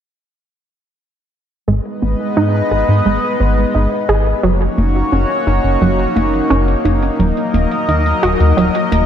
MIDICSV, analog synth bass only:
0, 0, Header, 1, 2, 480
1, 0, Start_track
1, 0, Key_signature, 5, "minor"
1, 0, Tempo, 689655
1, 1169, Time_signature, 4, 2, 24, 8
1, 6305, End_track
2, 0, Start_track
2, 0, Title_t, "Analog synth bass"
2, 0, Program_c, 0, 38
2, 1169, Note_on_c, 0, 32, 92
2, 1256, Note_off_c, 0, 32, 0
2, 1409, Note_on_c, 0, 32, 94
2, 1496, Note_off_c, 0, 32, 0
2, 1648, Note_on_c, 0, 44, 96
2, 1822, Note_off_c, 0, 44, 0
2, 1887, Note_on_c, 0, 32, 80
2, 1975, Note_off_c, 0, 32, 0
2, 2008, Note_on_c, 0, 44, 78
2, 2095, Note_off_c, 0, 44, 0
2, 2127, Note_on_c, 0, 32, 96
2, 2215, Note_off_c, 0, 32, 0
2, 2367, Note_on_c, 0, 32, 82
2, 2541, Note_off_c, 0, 32, 0
2, 2606, Note_on_c, 0, 32, 95
2, 2694, Note_off_c, 0, 32, 0
2, 2846, Note_on_c, 0, 32, 76
2, 3021, Note_off_c, 0, 32, 0
2, 3086, Note_on_c, 0, 30, 88
2, 3261, Note_off_c, 0, 30, 0
2, 3326, Note_on_c, 0, 30, 85
2, 3501, Note_off_c, 0, 30, 0
2, 3568, Note_on_c, 0, 30, 79
2, 3655, Note_off_c, 0, 30, 0
2, 3808, Note_on_c, 0, 30, 97
2, 3895, Note_off_c, 0, 30, 0
2, 3928, Note_on_c, 0, 30, 90
2, 4015, Note_off_c, 0, 30, 0
2, 4047, Note_on_c, 0, 30, 83
2, 4221, Note_off_c, 0, 30, 0
2, 4289, Note_on_c, 0, 30, 81
2, 4462, Note_off_c, 0, 30, 0
2, 4528, Note_on_c, 0, 30, 96
2, 4702, Note_off_c, 0, 30, 0
2, 4768, Note_on_c, 0, 30, 90
2, 4941, Note_off_c, 0, 30, 0
2, 5008, Note_on_c, 0, 27, 98
2, 5095, Note_off_c, 0, 27, 0
2, 5248, Note_on_c, 0, 27, 94
2, 5335, Note_off_c, 0, 27, 0
2, 5488, Note_on_c, 0, 39, 99
2, 5661, Note_off_c, 0, 39, 0
2, 5728, Note_on_c, 0, 27, 84
2, 5815, Note_off_c, 0, 27, 0
2, 5849, Note_on_c, 0, 39, 77
2, 5936, Note_off_c, 0, 39, 0
2, 5968, Note_on_c, 0, 27, 96
2, 6055, Note_off_c, 0, 27, 0
2, 6208, Note_on_c, 0, 27, 85
2, 6305, Note_off_c, 0, 27, 0
2, 6305, End_track
0, 0, End_of_file